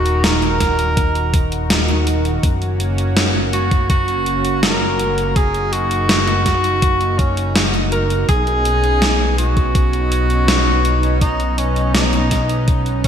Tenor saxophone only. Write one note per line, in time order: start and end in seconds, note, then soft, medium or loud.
0.00 0.25 F#4 loud
0.24 2.07 A#4 loud
3.53 3.87 F#4 loud
3.90 4.59 F#4 loud
4.63 5.38 A#4 loud
5.36 5.74 G#4 loud
5.73 7.20 F#4 loud
7.19 7.65 C#4 medium
7.92 8.26 A#4 loud
8.29 9.34 G#4 loud
9.38 11.17 F#4 loud
11.21 11.59 D#4 loud
11.58 11.94 C#4 medium
11.95 12.73 D#4 loud
13.04 13.08 C#4 loud